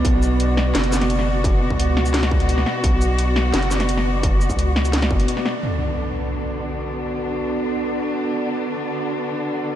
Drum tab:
HH |x---x---xx-xx---|x---x---xx-xx---|x---x---xx-xx---|x---x--xxx-xx---|
SH |--x-------x-----|-------x--------|--x-------x-----|--xx---x--------|
SD |------o-o-oo-o--|------o-oo---oo-|------o-o-oo-o--|------o-oo---oo-|
BD |o---------------|o--o------o-----|o---------------|o--o------o-----|

HH |----------------|----------------|----------------|
SH |----------------|----------------|----------------|
SD |----------------|----------------|----------------|
BD |----------------|----------------|----------------|